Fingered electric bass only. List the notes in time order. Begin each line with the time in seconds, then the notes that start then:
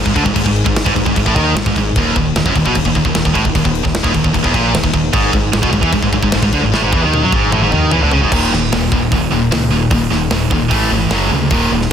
0.06 G#1
0.15 D2
0.25 G#1
0.36 G#1
0.45 G#1
0.66 G#1
0.86 G#1
0.96 G#1
1.06 G#1
1.16 G#1
1.27 A1
1.36 D#2
1.54 G#1
1.66 G#1
1.76 G#1
1.96 D#1
2.16 D#1
2.35 D#1
2.45 F#1
2.55 D#1
2.66 B1
2.76 D#1
2.86 D#1
2.95 D#1
3.05 D#1
3.15 D#1
3.25 D#1
3.35 A1
3.45 D#1
3.55 D#1
3.65 D#1
3.85 D#1
4.04 D#1
4.15 D#1
4.24 D#1
4.34 D#1
4.44 E1
4.54 A#1
4.73 D#1
4.84 D#1
4.94 D#1
5.13 G#1
5.33 G#1
5.53 G#1
5.63 B1
5.73 G#1
5.82 E2
5.93 G#1
6.02 G#1
6.13 G#1
6.23 G#1
6.34 G#1
6.42 G#1
6.53 D2
6.63 G#1
6.73 A1
6.83 G#1
6.93 E2
7.03 D#2
7.23 F#2
7.32 G#1
7.53 A1
7.62 G#1
7.73 D#2
7.93 E2
8.03 D2
8.13 C#2
8.23 G#1
8.32 D#1
8.52 D#1
8.72 D#1
8.92 D#1
9.12 D#1
9.32 D#1
9.50 C#2
9.71 D#1
9.91 D#1
10.11 D#1
10.31 D#1
10.51 D#1
10.71 A1
10.91 G#1
11.10 F#1
11.30 D2
11.51 D#1
11.71 D#1